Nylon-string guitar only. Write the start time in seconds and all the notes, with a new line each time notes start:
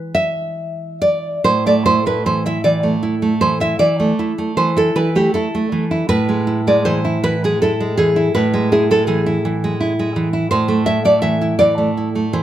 Already playing: E3 G#3 E4
0.15 E5
1.02 D5
1.44 A2 C5
1.66 A3 D5
1.86 E4 C5
2.06 A3 B4
2.26 E3 C5
2.46 E4 E5
2.64 E3 D5
2.83 A3
3.03 E4
3.22 A3
3.41 E3 C5
3.60 E4 E5
3.79 E3 D5
4.00 A3
4.19 E4
4.38 A3
4.57 E3 C5
4.77 E4 A4
4.96 E3 B4
5.15 A3 G4
5.34 E4 A4
5.55 A3
5.72 E3
5.91 E4
6.09 A2 B4
6.29 G#3
6.47 E4
6.67 G#3 D5
6.85 E3 C5
7.05 E4
7.24 E3 B4
7.44 G#3 G#4
7.62 E4 A4
7.80 G#3
7.97 E3 G#4
8.16 E4
8.35 A2 B4
8.54 G#3
8.72 E4 G#4
8.91 G#3 A4
9.07 E3 G#4
9.26 E4
9.45 E3
9.64 G#3
9.80 E4
9.99 G#3
10.16 E3
10.33 E4
10.51 A2 C5
10.68 A3
10.86 E4 E5
11.05 A3 D5
11.22 E3 E5
11.41 E4
11.59 E3 D5
11.78 A3
11.97 E4
12.15 A3
12.33 E3 C5